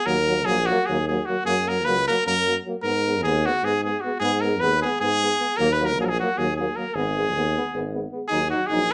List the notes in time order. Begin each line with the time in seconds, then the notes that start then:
0.05 D#2 F#3 A#3 A#4
0.27 F#3 A#3
0.45 A#1 F#3 A#3 G#4
0.66 F#3 F#4
0.70 A#3
0.86 D#2 F#3 A#3 G#4
1.08 F#3 A#3 G#4
1.26 F#3 A#3 F#4
1.45 F#2 F#3 A#3 G#4
1.67 F#3 A#3 A#4
1.85 C#2 F#3 A#3 B4
2.07 F#3 A#3 A#4
2.26 F#2 F#3 A#3 A#4
2.46 F#3 A#3
2.65 F#3 A#3
2.83 G#2 G#3 B3 A#4
3.07 G#3 B3
3.23 D#2 G#3 B3 G#4
3.45 G#3 B3 F#4
3.63 G#2 G#3 B3 G#4
3.84 B3 G#4
3.88 G#3
4.01 B3 F#4
4.06 G#3
4.20 G#2 G#3 B3 G#4
4.41 B3 A#4
4.45 G#3
4.60 D#2 G#3 B3 B4
4.82 G#3 B3 G#4
5.00 G#2 G#3 B3 G#4
5.22 G#3 B3
5.40 G#3 B3
5.57 D#2 F#3 A#3 A#4
5.73 B4
5.79 F#3 A#3
5.85 A#4
5.98 A#1 F#3 A#3 G#4
6.05 G#4 A#4
6.20 F#3 A#3 F#4
6.38 D#2 F#3 A#3 G#4
6.56 F#3 A#3 G#4
6.76 F#3 A#3 A#4
6.94 G#1 G#3 B3 G#4
7.17 G#3 B3
7.34 D#2 G#3 B3
7.57 G#3 B3
7.73 G#1 G#3 B3
7.93 G#3 B3
8.12 G#3 B3
8.28 D#2 D#4 G#4
8.32 F#3
8.50 D#4 F#4
8.55 F#3
8.66 A#1 G#4
8.71 F#3 D#4